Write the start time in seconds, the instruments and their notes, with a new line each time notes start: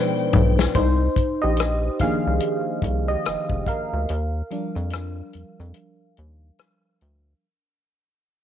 Already playing: string section B2 F3 G#3 G5, fm electric piano B2 F3 G#3 D4 D#4 B4 C5
0.17 shaker
0.33 analog synth bass B1, mid tom
0.58 snare, shaker
0.75 analog synth bass C2, fm electric piano D#4 C5, kick, closed hi-hat
1.16 kick, closed hi-hat
1.42 analog synth bass A#1, fm electric piano G4 D#5
1.57 cross-stick, closed hi-hat
1.99 analog synth bass C2, fm electric piano D#3 F3 A#3 D4 G#4 F5, kick, closed hi-hat
2.27 analog synth bass C2
2.40 closed hi-hat
2.82 analog synth bass C2, kick, closed hi-hat
3.08 fm electric piano G4 D#5
3.25 analog synth bass F1, cross-stick, closed hi-hat
3.49 analog synth bass F1, kick
3.66 fm electric piano A#4 F5, kick, closed hi-hat
3.93 analog synth bass D2
4.09 analog synth bass D#2, closed hi-hat
4.51 fm electric piano F3 G3 D4, closed hi-hat
4.75 analog synth bass F2, cross-stick
4.90 cross-stick, closed hi-hat
5.33 analog synth bass F2, closed hi-hat
5.60 analog synth bass F2, cross-stick
5.74 closed hi-hat
6.17 analog synth bass D#2, closed hi-hat
6.59 cross-stick, closed hi-hat
7.01 analog synth bass D2, closed hi-hat